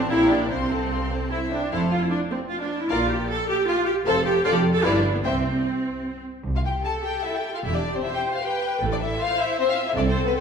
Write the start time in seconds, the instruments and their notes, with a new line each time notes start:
Already playing: violin section C5 A5
0.10 double bass section A#1, cello section A#2, viola section E4, violin section G4 F5 A#5
0.29 viola section D4, violin section A#4 D5 G5
0.50 double bass section C2, cello section C3, viola section C4, violin section C5 F5 C6
0.70 violin section A4 C5 A5
0.91 violin section C5 F5 C6
1.10 violin section A4 C5 A5
1.31 viola section E4, violin section C5 E5
1.51 viola section D4, violin section C5 E5 G5
1.71 double bass section F1, cello section F2, viola section E4, violin section A4 C5 F5
1.91 viola section F4
2.02 viola section E4
2.11 viola section D4
2.31 viola section C4
2.50 viola section F4
2.61 viola section D4
2.81 viola section E4
2.89 double bass section A#1, cello section A#2, viola section F4, violin section A#4 D5 F5
3.10 viola section G4
3.29 viola section A4
3.49 viola section G4
3.67 viola section F4
3.87 viola section G4
4.06 double bass section F1, cello section F2, viola section A4, violin section A4 C5 F5
4.25 viola section G4
4.45 double bass section F1, cello section F2, viola section F4, violin section A4 D5 F5
4.54 viola section G4
4.74 viola section A4
4.84 double bass section G1, cello section G2, viola section E4, violin section B4 D5 F5
4.94 viola section D4
5.14 viola section B3
5.23 double bass section C2, cello section C3, viola section C4, violin section C5 E5 G5
6.46 double bass section C2, cello section C2
6.56 violin section F4 F5
6.65 violin section G4 G5
6.84 viola section A4, violin section A4 A5
7.04 violin section G4 G5
7.23 violin section E4 E5
7.34 violin section G4 G5
7.54 violin section F4 F5
7.64 double bass section E1, cello section E2, violin section E4 E5, viola section G4
7.74 violin section D4 D5
7.94 violin section C4 C5
8.03 violin section E4 E5, viola section C5
8.13 violin section G4 G5
8.32 violin section F4 F5
8.42 violin section G4 G5, viola section B4
8.81 double bass section A1, cello section A2, viola section A4
8.90 violin section D4 D5
9.00 violin section E4 E5
9.19 violin section F4 F5, viola section C5
9.39 violin section E4 E5
9.59 violin section C4 C5, viola section E5
9.68 violin section F4 F5
9.87 violin section E4 E5
9.96 double bass section C2, cello section C3, violin section D4 D5, viola section A4
10.06 violin section C4 C5
10.25 violin section B3 B4
10.34 violin section C4 C5, viola section A4